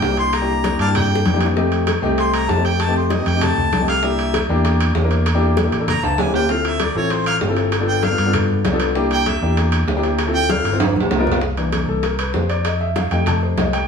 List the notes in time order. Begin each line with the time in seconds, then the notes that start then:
Already playing: G5
0.02 C2, high bongo, low bongo, high conga, low timbale
0.10 A#3 D4 E4 G4
0.17 C6, high conga, high timbale
0.33 A#5, high bongo, high conga, high timbale
0.41 A#3 D4 E4 G4
0.48 high bongo, high conga
0.64 high bongo, high conga, high timbale
0.71 A#3 D4 E4 G4
0.79 G2 D5 F5 A5, high conga, high timbale
0.86 A#3 D4 E4 G4
0.95 G5, high bongo, high conga, low conga, high timbale
1.05 high bongo
1.11 high conga
1.15 high bongo
1.26 F2, low bongo, high conga, high timbale
1.33 A#3 D4 E4 G4, low bongo
1.41 high conga, high timbale
1.46 low bongo
1.56 A3 C4 D#4 G4, high bongo, high conga
1.72 high conga, high timbale
1.87 high bongo, high conga, high timbale
2.02 C2 A3 C4 D#4 G4
2.18 C6, high bongo, high conga, high timbale
2.34 A#5, high conga, high timbale
2.49 F2 A5, high bongo, low bongo, low timbale
2.56 A3 C4 D#4 G4
2.65 G5, high conga, high timbale
2.80 A5, high bongo, high conga, high timbale
2.87 A3 C4 D#4 G4
2.95 C5, high bongo, high conga
3.10 D#5, high bongo, high conga, high timbale
3.18 A3 C4 D#4 G4
3.26 F2 G5, high conga, high timbale
3.34 A3 C4 D#4 G4
3.41 A5, high bongo, high conga, low conga, high timbale
3.57 D2, high bongo, high conga, low conga
3.72 C2, high bongo, low bongo, high conga, high timbale
3.80 A3 C4 D#4 G4
3.88 F5, high bongo, high conga, high timbale
4.03 A#3 D4 E4 G4 E5, high bongo, high conga
4.19 high conga, high timbale
4.34 high bongo, high conga, high timbale
4.49 E2 A#3 D4 E4 G4
4.65 high bongo, high conga, high timbale
4.81 high conga, high timbale
4.95 E2, high bongo, low bongo, low timbale
5.03 A#3 D4 E4 A#4
5.11 high conga, high timbale
5.26 high bongo, high conga, high timbale
5.34 A#3 D4 E4 G4
5.42 high bongo, high conga
5.57 high bongo, high conga, high timbale
5.64 A#3 D4 E4 G4
5.72 A1, high conga, high timbale
5.79 A#3 D4 E4 A4
5.88 A#5, high bongo, high conga, low conga, high timbale
6.03 C#2 A5, high bongo, high conga, high timbale
6.18 D2 G#5, high bongo, low bongo, high conga, low timbale
6.26 A#3 C#4 E4 G4
6.34 G5, high bongo, low timbale
6.49 C4 E4 F4 A4 F5, high bongo, high conga
6.65 E5, high conga, high timbale
6.80 D5, high bongo, high conga, high timbale
6.95 A1 C4 E4 F4 A4 C#5
7.10 C5, high bongo, high conga, high timbale
7.26 F5, high conga, high timbale
7.41 G1, high bongo, low bongo, high conga, low timbale
7.49 C4 E4 F4 A4
7.57 high conga, high timbale
7.72 high bongo, high conga, high timbale
7.80 B3 D4 F4 A4
7.87 G5, high bongo, high conga
8.03 F5, high bongo, high conga, high timbale
8.10 B3 D4 F4 A4
8.18 G2, high conga, high timbale
8.26 B3 D4 F4 A4
8.33 high bongo, high conga, low conga, high timbale
8.50 high bongo, high conga
8.64 C2, high bongo, low bongo, high conga, high timbale, low timbale
8.72 B3 D4 F4 A4
8.80 high bongo, high conga, high timbale
8.95 A#3 D4 E4 G4, high bongo, high conga
9.11 G5, high conga, high timbale
9.26 E5, high bongo, high conga, high timbale
9.42 E2 A#3 D4 E4 G4
9.57 high bongo, high conga, high timbale
9.72 high conga, high timbale
9.88 D2, high bongo, low bongo, high conga, low timbale
9.96 A#3 D4 E4 G4
10.03 high conga, high timbale
10.19 high bongo, high conga, high timbale
10.27 C4 E4 F4 A4
10.34 G5, high bongo, high conga
10.50 F5, high bongo, high conga, high timbale
10.57 C4 E4 F4 A4
10.65 G1, high conga, high timbale
10.72 C4 E4 F4 C5
10.80 high bongo, high conga, high timbale
10.95 A#1, high bongo, high conga
11.01 low timbale
11.10 C2, high bongo, low bongo, low timbale
11.18 B3 D#4 F4 A#4
11.26 high bongo, low conga
11.32 low timbale
11.41 high bongo, high conga
11.57 E3 A#3 D4, high conga, high timbale
11.72 high bongo, high conga, high timbale
11.88 C2 A4
12.03 A#4, high bongo, high conga, high timbale
12.19 B4, high conga, high timbale
12.34 F2 C5, high bongo, low bongo, low timbale
12.49 D5, high conga, high timbale
12.65 D#5, high bongo, high conga, high timbale
12.80 E5, high bongo, high conga
12.96 F5, high bongo, high conga, high timbale
13.11 F2 G3 A3 D#4 G5, high timbale
13.26 A5, high bongo, high conga, low conga, high timbale
13.42 C5, high bongo, high conga
13.57 C2 D#5, high bongo, low bongo, high conga, high timbale, low timbale
13.73 G5, high bongo, high conga, high timbale